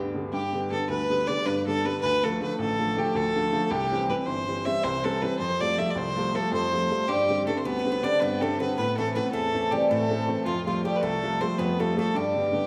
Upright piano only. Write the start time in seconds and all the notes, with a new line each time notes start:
Already playing: D2 G2 D3 G3 B3
0.15 D3 G3 B3
0.33 G2
0.53 D3 G3 B3
0.71 D3 G3 B3
0.89 D2
1.09 D3 G3 B3
1.28 D3 G3 B3
1.46 G2
1.67 D3 G3 B3
1.85 D3 G3 B3
2.03 D2
2.23 D3 F3 A3
2.40 D3 F3 A3
2.59 A1
2.79 D3 F3 A3
2.97 D3 F3 A3
3.14 D2
3.35 D3 F3 A3
3.52 D3 F3 A3
3.71 C2
3.91 E3 G3 C4
4.09 E3 G3 C4
4.27 G1
4.48 E3 G3 C4
4.65 E3 G3 C4
4.84 C2
5.04 E3 G3 C4
5.22 E3 G3 C4
5.40 F2
5.60 F3 G3 A3
5.78 F3 G3 A3
5.95 C2
6.16 F3 G3 A3
6.34 F3 G3 A3
6.52 F2
6.72 F3 G3 A3
6.90 F3 G3 A3
7.08 G2
7.29 D3 G3 C4
7.47 D3 G3 C4
7.65 D2
7.85 D3 G3 C4
8.03 D3 G3 C4
8.21 G2
8.41 D3 G3 C4
8.60 D3 G3 C4
8.78 A2
8.98 E3 A3 C4
9.16 E3 A3 C4
9.33 E2
9.54 E3 A3 C4
9.72 E3 A3 C4
9.90 A2
10.10 E3 A3 C4
10.28 E3 A3 C4
10.45 F2
10.66 F3 G3 A3
10.84 F3 G3 A3
11.03 C2
11.23 F3 G3 A3
11.41 F3 G3 A3
11.59 F2
11.79 F3 G3 A3
11.97 F3 G3 A3
12.14 G2
12.35 D3 G3 B3
12.52 D3 G3 B3